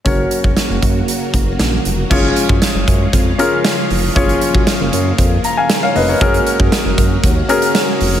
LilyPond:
<<
  \new Staff \with { instrumentName = "Grand piano" } { \time 4/4 \key fis \major \tempo 4 = 117 << { r1 | r1 | r2 r8 ais''16 <eis'' gis''>8 <cis'' eis''>16 <b' dis''>16 <ais' cis''>16~ | <ais' cis''>16 r2. r8. | } \\ { <cis' fis' ais' cis''>1 | <cis' eis' gis' cis''>4. r4 <cis' eis' gis' ais'>4 r8 | <cis' eis' gis' cis''>4. r2 r8 | <cis' fis' gis' ais'>4. r4 <cis' fis' gis' ais'>4 r8 | } >> }
  \new Staff \with { instrumentName = "String machine" } { \clef bass \time 4/4 \key fis \major << { <cis fis fis'>1 | <cis eis eis'>1~ | <cis eis eis'>1 | <cis gis fis'>1 | } \\ { ais1 | gis1 | ais1~ | ais1 | } >> }
  \new Staff \with { instrumentName = "Analog synth bass" } { \clef bass \time 4/4 \key fis \major fis,,8 r16 fis,,16 r16 fis,,16 fis,8 r8 fis,,8 ais,,8 eis,,8 | fis,,8 r16 fis,16 r16 fis,,16 fis,8 eis,8 r4 eis,,8 | fis,,8 r16 fis,16 r16 fis,,16 fis,8 eis,8 r4 eis,,8 | fis,,8 r16 fis,16 r16 fis,,16 fis,8 dis,8 r4 eis,,8 | }
  \new DrumStaff \with { instrumentName = "Drums" } \drummode { \time 4/4 <hh bd>8 hh16 bd16 <hh sn>8 <hh bd>8 hh8 <hh bd>8 <hh sn>8 hh8 | <cymc bd>8 hh16 bd16 <hh sn>8 <hh bd>8 <hh bd>8 hh8 <hh sn>8 hho8 | <hh bd>16 hh16 hh16 bd16 <hh sn>8 hh8 <hh bd>8 hh8 <hh sn>8 hho8 | <hh bd>16 hh16 hh16 bd16 <hh sn>8 <hh bd>8 <hh bd>8 hh16 hh16 <hh sn>8 hho8 | }
>>